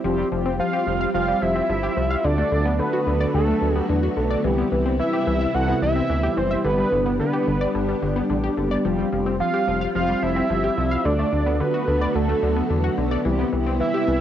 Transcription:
0.04 F1 F3 G3 C4 F4 G4
0.18 G3
0.32 F1 F3 G3 C4 F4 G4
0.46 C4
0.59 F3 G3 C4 F4 G4 F5
0.73 G4
0.87 F1 F3 G3 C4 F4 G4
1.01 F5
1.14 F1 F3 G3 C4 F4 G4 F5
1.28 G3
1.42 F1 F3 G3 C4 F4 G4 E5
1.56 C4
1.69 G1 F3 G3 C4 F4 G4
1.83 G4
1.97 C2 F3 G3 C4 F4 G4
2.11 F5
2.24 D2 D3 F#3 A3 B3 D4 F#4 A4 D5
2.38 A3
2.52 D2 D3 A3 D4 F#4 A4
2.66 B3
2.79 D3 A3 D4 F#4 A4 B4
2.93 F#4
3.07 D2 D3 A3 D4 F#4 A4
3.21 D5
3.34 D2 D3 A3 D4 F#4 A4
3.48 A3
3.62 D2 D3 A3 D4 F#4 A4
3.75 B3 G4
3.89 E2 D3 A3 D4 F#4 B4
4.03 F#4
4.17 B1 D3 A3 D4 F#4 A4
4.31 D5
4.44 C2 C3 E3 G3 C4 E4 G4
4.58 B3
4.72 C2 E3 G3 C4 E4 G4
4.86 C4
4.99 E3 G3 C4 E4 G4 E5
5.13 G4
5.27 C2 E3 G3 C4 E4 G4
5.41 E5
5.54 C2 E3 G3 C4 E4 A4 F#5
5.68 B3
5.82 C2 E3 G3 C4 E4 G4 E5
5.96 C4
6.10 D2 E3 G3 C4 E4 A4
6.23 G4
6.37 F#1 E3 G3 C4 E4 G4 C5
6.51 E5
6.65 G1 D3 G3 B3 D4 G4 B4
6.78 G3
6.92 G1 D3 G3 B3 D4 G4
7.06 B3
7.20 D3 G3 B3 D4 G4 B4
7.33 G4
7.47 G1 D3 G3 B3 D4 G4
7.61 D5
7.75 G1 D3 G3 B3 D4 G4
7.88 G3
8.02 G1 D3 G3 B3 D4 G4
8.16 B3
8.30 A1 D3 G3 B3 D4 G4
8.44 G4
8.57 F#1 D3 G3 B3 D4 G4
8.71 D5
8.85 F1 F3 G3 C4 F4 G4
8.99 G3
9.12 F1 F3 G3 C4 F4 G4
9.26 C4
9.40 F3 G3 C4 F4 G4 F5
9.54 G4
9.67 F1 F3 G3 C4 F4 G4
9.81 F5
9.95 F1 F3 G3 C4 F4 G4 F5
10.09 G3
10.22 F1 F3 G3 C4 F4 G4 E5
10.36 C4
10.50 G1 F3 G3 C4 F4 G4
10.64 G4
10.77 C2 F3 G3 C4 F4 G4
10.91 F5
11.05 D2 D3 F#3 A3 B3 D4 F#4 A4 D5
11.19 A3
11.33 D2 D3 A3 D4 F#4 A4
11.46 B3
11.60 D3 A3 D4 F#4 B4
11.74 F#4
11.87 D2 D3 A3 D4 F#4 A4
12.01 D5
12.15 D2 D3 A3 D4 F#4 A4
12.29 A3
12.43 D2 D3 A3 D4 F#4 A4
12.56 B3
12.70 E2 D3 A3 D4 F#4 A4
12.84 F#4
12.98 B1 D3 A3 D4 F#4 A4
13.11 D5
13.25 C2 C3 E3 G3 C4 E4 G4
13.39 B3
13.53 C2 E3 G3 C4 E4 G4
13.66 C4
13.80 E3 G3 C4 E4 G4 E5
13.94 G4
14.08 C2 E3 G3 C4 E4 G4

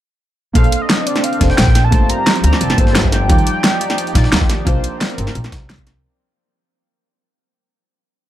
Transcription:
0.53 A#1 A#3 C4 D4 A4 C5 F5, kick, closed hi-hat
0.64 closed hi-hat
0.72 closed hi-hat
0.82 D#5
0.90 snare, closed hi-hat
1.07 D5, closed hi-hat
1.16 snare, closed hi-hat
1.24 F5, closed hi-hat
1.33 closed hi-hat
1.39 F1 A#3 D4 A4 C5, kick, snare, closed hi-hat
1.50 G5, snare
1.58 A#1, snare, closed hi-hat
1.67 kick, snare
1.75 snare, closed hi-hat
1.84 A5
1.90 G1 F3 G3 A3 A#3 C4 F4 G4 C5, kick, closed hi-hat
2.09 A#5, closed hi-hat
2.26 snare, closed hi-hat
2.36 closed hi-hat
2.44 D2 A#5, closed hi-hat
2.53 snare
2.61 F1 A5, closed hi-hat
2.70 snare, closed hi-hat
2.76 G1 A#3 F4 A4 C5, kick, closed hi-hat
2.87 snare
2.95 snare, closed hi-hat
3.04 kick
3.12 G5, snare, closed hi-hat
3.28 D#2 G3 D#4 F4 G4 D5, kick, closed hi-hat
3.38 closed hi-hat
3.47 closed hi-hat
3.64 snare, closed hi-hat
3.81 closed hi-hat
3.90 snare, closed hi-hat
3.98 closed hi-hat
4.07 closed hi-hat
4.14 A#1 G3 D#4 F4 D5, kick, snare, closed hi-hat
4.24 snare
4.32 D#2, snare, closed hi-hat
4.41 kick, snare
4.50 snare, closed hi-hat
4.65 C2 A#3 C4 D4 F4 A#4 C5, kick, closed hi-hat
4.84 closed hi-hat
5.01 snare, closed hi-hat
5.10 closed hi-hat
5.18 G1, closed hi-hat
5.27 snare
5.35 A#1, closed hi-hat
5.44 snare, closed hi-hat
5.52 C2, kick, snare, closed hi-hat
5.69 snare, closed hi-hat
5.78 kick, closed hi-hat
5.87 snare, closed hi-hat

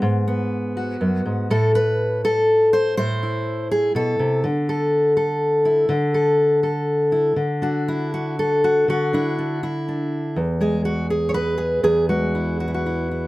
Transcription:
Already playing: B3
0.02 G#2
0.28 B3
0.77 F#4
1.01 F#2
1.26 G#2
1.50 A2 A4
1.75 B4
2.25 A4
2.73 C5
2.97 A2 C5
3.23 E4
3.71 G#4
3.95 B2 A4
4.19 C3
4.44 D3
4.69 A4
5.17 A4
5.65 E4
5.89 D3
6.14 A4
6.63 A4
7.12 E4
7.36 D3
7.62 D4 F#4
7.88 E4
8.14 F#4
8.39 A4
8.64 F#4
8.88 D3 F#4
9.13 D4 E4
9.39 D4
9.63 E4
9.88 D4
10.36 E2
10.61 G#3 G#4
10.85 F#4
11.10 G#4
11.29 C#5
11.34 B4
11.58 G#4
11.83 E2 G#4
12.09 G#3 F#4
12.35 E4
12.60 F#4
12.68 E4
12.74 F#4
12.86 E4
13.11 E4

